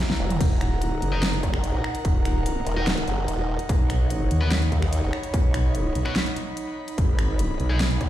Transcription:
Already playing: E4 C#5 F#5 A#5
0.10 snare
0.20 E1
0.30 closed hi-hat, mid tom
0.41 D#1 D#4, kick, closed hi-hat, crash
0.61 finger snap, closed hi-hat
0.71 A#4
0.82 D1, closed hi-hat
1.02 F#1, closed hi-hat
1.12 D#4 A#4 D#5
1.23 snare, closed hi-hat
1.33 closed hi-hat
1.43 F#1, kick, closed hi-hat
1.54 finger snap
1.64 closed hi-hat
1.74 A#1
1.84 finger snap
1.95 closed hi-hat
2.05 D#1, kick, closed hi-hat
2.25 finger snap, closed hi-hat
2.46 closed hi-hat
2.67 D#1, closed hi-hat
2.77 D#4 A#4 D#5
2.87 snare, closed hi-hat
2.97 closed hi-hat
3.08 F#1, closed hi-hat
3.28 D#1, closed hi-hat
3.59 closed hi-hat
3.69 B1, kick, closed hi-hat
3.77 C#5
3.90 finger snap, closed hi-hat
4.10 closed hi-hat
4.31 D#2, closed hi-hat
4.41 B3 F#4 B4
4.51 snare, closed hi-hat
4.62 B5, closed hi-hat
4.72 D#2, kick, closed hi-hat
4.82 finger snap
4.93 closed hi-hat
5.03 F#1
5.13 finger snap
5.23 closed hi-hat
5.34 B1, kick, closed hi-hat
5.54 finger snap, closed hi-hat
5.75 closed hi-hat
5.95 B1, closed hi-hat
6.05 B3 F#4 B4, finger snap
6.16 snare, closed hi-hat
6.26 closed hi-hat
6.36 closed hi-hat
6.57 closed hi-hat
6.88 closed hi-hat
6.98 G#1, kick, closed hi-hat
7.18 G#5, finger snap, closed hi-hat
7.36 B4, closed hi-hat
7.60 B1, closed hi-hat
7.70 G#3 D#4 G#4
7.80 snare, closed hi-hat
7.91 closed hi-hat
8.01 B1, kick, closed hi-hat

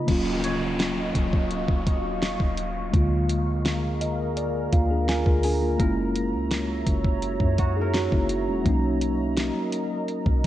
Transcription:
Already playing: C#3 B3
0.06 D#1 F#3 A#3 C#4 D#5 F5 C#6, kick, closed hi-hat, crash, downlifter
0.11 F4
0.44 C#5, closed hi-hat
0.80 snare, closed hi-hat
1.15 D#1, kick, closed hi-hat
1.33 kick
1.51 C#1, closed hi-hat
1.68 D#1, kick
1.87 kick, closed hi-hat
2.23 snare, closed hi-hat
2.40 D#1, kick
2.58 closed hi-hat
2.92 D2 D3 G#3 A#3 G#4 A#4 A#5, kick, closed hi-hat
2.96 F4
3.29 closed hi-hat
3.65 snare, closed hi-hat
4.01 D#5, closed hi-hat
4.37 D5, closed hi-hat
4.72 D2 A#3 F4 F5, kick, closed hi-hat
4.91 D4 G#4
5.09 F4 A#4 G#5, snare, closed hi-hat
5.26 D2 F4 A#4, kick
5.43 D4 G#4 G#5, open hi-hat
5.62 A#3 F4
5.78 F#1 G#3 A#3 C#4 F#4 A#4 C#5 E5, kick, closed hi-hat
5.83 E4
6.16 closed hi-hat
6.33 C#2
6.51 snare, closed hi-hat
6.87 F#1, kick, closed hi-hat
7.05 kick
7.22 closed hi-hat
7.40 F#2, kick
7.58 F#4, kick, closed hi-hat
7.77 D#4 G#4
7.81 A#4
7.94 C#4 F#4, snare, closed hi-hat
8.12 F#1 A#3 E4, kick
8.29 closed hi-hat
8.48 E1 G#3 C#4
8.64 B1 F#3 A#3 C#4 A#4 D#5, kick, closed hi-hat
8.68 D#4
9.01 closed hi-hat
9.37 snare, closed hi-hat
9.73 closed hi-hat
10.08 closed hi-hat
10.26 B1, kick

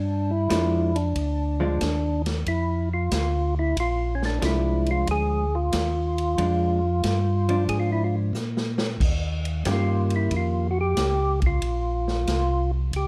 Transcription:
Already playing: G2 D4
0.31 E4
0.50 F2 F3 G#3 D4, kick, snare, hi-hat pedal, ride
0.95 D4, ride
1.15 D2, kick, ride
1.60 F3 G#3 D4
1.81 D#2, kick, snare, hi-hat pedal, ride
2.26 snare, ride
2.46 F2 E4, kick, ride
2.94 F4
3.11 D2 F4, kick, snare, hi-hat pedal, ride
3.59 E4
3.77 A#1 F4, kick, ride
4.15 C#4
4.22 D4, snare
4.40 C2 F3 G#3 D4, kick, snare, hi-hat pedal, ride
4.45 E4
4.86 ride
4.91 F4
5.07 D2 G#4, kick, ride
5.55 F4
5.72 D#2, kick, snare, hi-hat pedal, ride
6.18 ride
6.38 F2 F3 G#3 D4, kick, ride
7.03 G2, kick, snare, hi-hat pedal, ride
7.49 F3 D4, ride
7.69 G#2 G#4, kick, ride
7.80 F4
7.92 E4
8.04 F4
8.33 A#2, snare, hi-hat pedal
8.57 snare
8.78 snare
9.00 D#2, kick, crash
9.45 ride
9.65 G2 D#3 A#3 C#4 G4, kick, snare, hi-hat pedal, ride
9.71 F4
10.10 ride
10.16 E4
10.31 F2, kick, ride
10.37 F4
10.71 F#4
10.81 G4
10.97 C#2, kick, snare, hi-hat pedal, ride
11.42 kick, ride
11.46 F4
11.62 A#1, kick, ride
12.08 snare
12.27 C2, kick, snare, hi-hat pedal, ride
12.93 C#2 G4, kick, ride

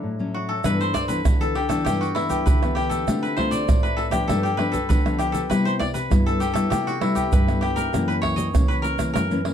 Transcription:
Already playing: F#3 A3 D4 E4 F#4
0.03 A2
0.19 F#3 A3 C#4
0.34 F#4
0.49 A4
0.64 G2 E3 B3 D4 B4, pandeiro, tamborim, shaker, surdo
0.81 C5, pandeiro, shaker
0.94 D5, pandeiro, tamborim, shaker, surdo
1.08 E3 B3 D4 B4, pandeiro, shaker
1.25 D3 E3 B3 D4, pandeiro, tamborim, shaker, surdo
1.41 A4, pandeiro, shaker
1.55 G4, pandeiro
1.69 E3 B3 D4 A4, pandeiro, tamborim, shaker, surdo
1.84 G2 G4, pandeiro, tamborim, shaker, surdo
2.01 F#4, pandeiro, shaker
2.15 E3 B3 D4 E4, pandeiro, tamborim
2.30 G4, pandeiro, shaker, surdo
2.46 D3 B4, pandeiro, shaker, surdo
2.63 E3 B3 D4, pandeiro, tamborim, shaker
2.75 G4, pandeiro, tamborim, surdo
2.89 A4, pandeiro, shaker, surdo
3.08 D3 A3 C4 F4, pandeiro, tamborim, shaker, surdo
3.23 B4, pandeiro, shaker
3.36 A3 C4 F4 C5, pandeiro, tamborim, surdo
3.51 D5, pandeiro, shaker
3.68 A2 A3 C4 F4, pandeiro, tamborim, shaker, surdo
3.83 B4, pandeiro, shaker
3.97 A4, pandeiro
4.11 F3 B3 D4 G4, pandeiro, tamborim, shaker, surdo
4.28 G2 A4, pandeiro, tamborim, shaker, surdo
4.43 G4, pandeiro, shaker
4.57 F3 B3 D4 B4, pandeiro, tamborim
4.72 A4, pandeiro, shaker, surdo
4.89 D3 F3 B3 D4 B4, pandeiro, shaker, surdo
5.05 F3 B3 D4, pandeiro, tamborim, shaker
5.18 G4, pandeiro, tamborim, shaker
5.32 A4, pandeiro, shaker, surdo
5.50 C3 G3 B3 E4 B4, pandeiro, tamborim, shaker, surdo
5.65 C5, pandeiro, shaker
5.79 D5, pandeiro, tamborim, surdo
5.94 B4, pandeiro, shaker
6.10 G2 G3 B3 E4, pandeiro, tamborim, shaker, surdo
6.26 A4, pandeiro, shaker
6.40 G4, pandeiro, shaker
6.53 G3 B3 E4 A4, pandeiro, tamborim, shaker, surdo
6.70 C3 G4, pandeiro, tamborim, shaker, surdo
6.87 F#4, pandeiro, shaker
7.01 G3 B3 E4, pandeiro, tamborim
7.15 G4, pandeiro, shaker, surdo
7.32 G2 B4, pandeiro, shaker, surdo
7.47 G3 B3 E4, pandeiro, tamborim, shaker
7.61 G4, pandeiro, tamborim
7.76 A#4, pandeiro, shaker, surdo
7.93 F#2 E3 A#3 C#4, pandeiro, tamborim, shaker, surdo
8.08 B4, pandeiro, shaker
8.22 C#5, pandeiro, tamborim, surdo
8.36 D#5, pandeiro, shaker
8.53 C#3 E3 A#3 C#4, pandeiro, tamborim, shaker, surdo
8.68 B4, pandeiro, shaker
8.82 A#4, pandeiro, shaker
8.98 E3 A#3 C#4, pandeiro, tamborim, shaker, surdo
9.13 F#2 A#4, pandeiro, tamborim, shaker, surdo
9.31 E3 A#3 C#4, pandeiro, shaker
9.45 E3 A#3 C#4, pandeiro, tamborim

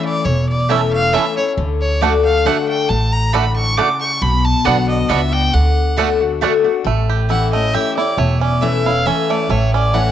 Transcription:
Already playing: E3 A3 C#4 E4
0.05 D5
0.25 E1 E2 C#5
0.49 D5
0.69 E3 A3 C#4 E4 C#5 E5 A5
0.93 F5
1.13 E3 A3 C#4 E4 C#5 E5 A5
1.36 C#4 E4 C#5
1.57 D2 D3
1.81 C#5
2.01 D3 A3 D4 F#4 D5 F#5
2.25 F5
2.45 D3 A3 D4 F#4 D5 F#5
2.68 G5
2.89 A1 A2 A5
3.12 A#5
3.32 D3 A3 D4 F#4 D5 F#5 B5
3.56 C#6
3.77 C#3 A3 D4 F#4 D5 F#5 D6
4.01 C#6
4.22 B1 B2 B5
4.44 A5
4.65 B1 D3 B3 D4 F#4 D5 F#5
4.89 D#5
5.09 C#2 B3 D4 F#4 D5 E5 F#5
5.33 G5
5.53 D2 D3 F#5
5.97 D3 A3 D4 F#4 D5 F#5
6.21 D4 F#4
6.41 D3 A3 D4 F#4 D5 F#5
6.64 D4 F#4
6.84 A1 A2 A3
7.09 G4
7.29 E3 A3 C#4 E4 F#5
7.53 A3 C#4 E4 D#5
7.74 E3 A3 C#4 E4 G4 E5
7.96 C#4 E4 D5
8.17 E1 E2 A3 C#5
8.41 C#4 D5
8.61 E3 A3 C#4 E4 E5
8.84 C#4 E4 F5
9.06 E3 A3 C#4 E4 E5
9.30 A3 D5
9.49 A1 A2 A3 C#5
9.73 C#4 D5
9.93 E3 A3 C#4 E4 F#5

